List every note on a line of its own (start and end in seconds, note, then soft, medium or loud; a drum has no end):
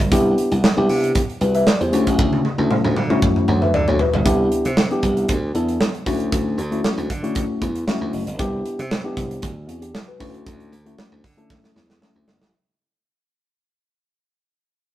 0.00 0.10 G1 medium
0.00 kick loud
0.12 0.34 C2 loud
0.12 0.56 B3 loud
0.12 0.56 D4 medium
0.12 0.56 E4 medium
0.12 0.56 G4 loud
0.12 kick loud
0.12 closed hi-hat loud
0.38 closed hi-hat medium
0.52 0.62 C2 loud
0.52 closed hi-hat medium
0.64 snare loud
0.77 0.88 C2 loud
0.77 1.20 B3 medium
0.77 1.20 D4 medium
0.77 1.20 E4 medium
0.77 1.21 G4 loud
0.89 1.11 C3 medium
0.89 open hi-hat medium
1.04 closed hi-hat medium
1.15 kick loud
1.15 closed hi-hat medium
1.30 closed hi-hat soft
1.41 1.63 C2 medium
1.41 1.55 F#4 medium
1.41 1.54 B4 medium
1.41 closed hi-hat medium
1.55 1.67 B4 medium
1.55 1.67 E5 medium
1.55 closed hi-hat medium
1.67 1.81 A4 medium
1.67 1.80 D5 medium
1.67 snare loud
1.81 1.91 E2 medium
1.81 2.06 G4 medium
1.81 2.05 C5 medium
1.81 closed hi-hat soft
1.92 2.05 D2 loud
1.92 2.44 A3 loud
1.92 2.45 C#4 medium
1.92 2.45 E4 medium
1.92 2.45 F#4 loud
1.92 closed hi-hat medium
2.07 2.19 A1 medium
2.07 kick medium
2.07 closed hi-hat medium
2.19 2.41 D2 loud
2.19 kick loud
2.19 high tom medium
2.33 high tom medium
2.45 high tom medium
2.58 2.69 D2 loud
2.58 2.92 A3 medium
2.58 2.93 C#4 medium
2.58 2.93 E4 medium
2.58 2.93 A4 medium
2.58 high tom medium
2.71 mid tom medium
2.84 2.95 D2 loud
2.84 mid tom medium
2.96 3.18 D3 loud
2.96 mid tom medium
3.10 3.53 A3 medium
3.10 3.53 C#4 medium
3.10 3.48 E4 medium
3.10 3.48 F#4 loud
3.10 mid tom medium
3.22 kick loud
3.22 mid tom loud
3.36 mid tom medium
3.48 3.70 D2 medium
3.48 3.62 C#5 soft
3.48 3.61 F#5 medium
3.48 mid tom loud
3.62 3.74 B4 medium
3.62 3.73 E5 medium
3.62 mid tom medium
3.74 3.86 D3 loud
3.74 3.87 A4 medium
3.74 3.87 D5 medium
3.74 floor tom loud
3.88 3.98 D2 medium
3.88 4.00 F#4 medium
3.88 3.99 C#5 medium
3.88 floor tom medium
3.99 4.13 F#4 medium
3.99 4.13 B4 medium
3.99 floor tom medium
4.14 4.24 G1 medium
4.14 4.25 E4 medium
4.14 4.38 A4 medium
4.14 floor tom loud
4.25 4.48 C2 loud
4.25 4.70 B3 loud
4.25 4.70 D4 medium
4.25 4.70 E4 loud
4.25 4.70 G4 loud
4.25 kick loud
4.25 closed hi-hat medium
4.52 closed hi-hat medium
4.65 4.87 C3 loud
4.65 closed hi-hat medium
4.77 snare loud
4.91 5.34 B3 medium
4.91 5.34 D4 medium
4.91 5.34 E4 medium
4.91 5.35 G4 loud
4.91 closed hi-hat soft
5.03 5.25 C2 medium
5.03 kick medium
5.03 closed hi-hat medium
5.17 closed hi-hat soft
5.29 5.51 D2 loud
5.29 kick loud
5.29 closed hi-hat medium
5.54 5.77 E2 medium
5.54 5.90 B3 medium
5.54 5.90 D4 medium
5.54 5.90 E4 medium
5.54 5.91 A4 medium
5.54 closed hi-hat medium
5.68 closed hi-hat medium
5.81 snare loud
5.94 closed hi-hat soft
6.06 6.28 D2 loud
6.06 6.58 A3 medium
6.06 6.58 C#4 medium
6.06 6.58 E4 medium
6.06 6.59 F#4 loud
6.06 kick medium
6.06 open hi-hat medium
6.20 closed hi-hat medium
6.32 6.54 D2 loud
6.32 kick loud
6.32 closed hi-hat medium
6.58 6.80 D2 loud
6.58 closed hi-hat medium
6.71 7.06 A3 medium
6.71 7.06 C#4 medium
6.71 7.06 E4 medium
6.71 7.06 F#4 medium
6.71 closed hi-hat medium
6.84 snare loud
6.98 7.08 D2 loud
6.98 closed hi-hat soft
7.10 7.43 D3 medium
7.10 kick medium
7.10 closed hi-hat medium
7.23 7.66 A3 medium
7.23 7.67 C#4 medium
7.23 7.67 E4 medium
7.23 7.67 F#4 loud
7.23 closed hi-hat soft
7.35 kick loud
7.35 closed hi-hat loud
7.62 7.84 E2 medium
7.62 kick medium
7.62 closed hi-hat medium
7.75 closed hi-hat medium
7.87 8.23 A3 loud
7.87 8.23 C#4 medium
7.87 8.23 E4 medium
7.87 8.23 F#4 loud
7.87 snare loud
8.01 8.12 D2 medium
8.13 8.25 F#1 medium
8.13 open hi-hat medium
8.27 8.39 G1 medium
8.27 closed hi-hat medium
8.39 8.61 C2 loud
8.39 8.83 B3 medium
8.39 8.83 D4 medium
8.39 8.84 E4 medium
8.39 8.84 G4 loud
8.39 kick loud
8.39 closed hi-hat loud
8.66 closed hi-hat medium
8.79 9.01 C3 loud
8.79 closed hi-hat medium
8.91 snare loud
9.04 9.48 B3 medium
9.04 9.48 D4 medium
9.04 9.48 E4 medium
9.04 9.48 G4 loud
9.17 9.39 C2 medium
9.17 kick medium
9.17 closed hi-hat medium
9.31 closed hi-hat medium
9.42 9.69 D2 medium
9.42 kick loud
9.42 closed hi-hat medium
9.68 9.91 E2 medium
9.68 9.82 C4 medium
9.68 9.82 F#4 medium
9.68 closed hi-hat medium
9.82 9.94 D4 medium
9.82 9.94 G4 medium
9.82 closed hi-hat medium
9.94 10.08 E4 medium
9.94 10.07 A4 medium
9.94 snare loud
10.08 10.19 F#4 medium
10.08 10.33 B4 medium
10.20 10.42 D2 medium
10.20 10.72 A3 loud
10.20 10.72 C#4 medium
10.20 10.72 E4 medium
10.20 10.72 F#4 medium
10.20 kick medium
10.20 open hi-hat medium
10.34 closed hi-hat medium
10.46 10.68 D2 loud
10.46 kick loud
10.46 closed hi-hat loud
10.60 closed hi-hat soft
10.72 10.94 D2 loud
10.72 closed hi-hat medium
10.86 11.20 A3 medium
10.86 11.20 C#4 medium
10.86 11.20 E4 medium
10.86 11.20 F#4 medium
10.86 closed hi-hat soft
10.98 snare loud
11.12 11.22 D2 loud
11.24 11.57 D3 loud
11.24 kick medium
11.24 open hi-hat medium
11.37 11.81 A3 loud
11.37 11.81 C#4 medium
11.37 11.81 E4 medium
11.37 11.81 A4 loud
11.37 closed hi-hat soft
11.50 kick loud
11.50 snare medium
11.64 snare medium
11.76 11.98 E2 medium
11.76 snare medium
11.90 snare medium
12.01 12.37 A3 loud
12.01 12.37 C#4 medium
12.01 12.37 E4 medium
12.01 12.37 A4 medium
12.01 snare medium
12.15 12.26 D2 medium
12.27 12.39 G1 medium
12.27 snare medium
12.41 12.51 A1 medium
12.41 snare medium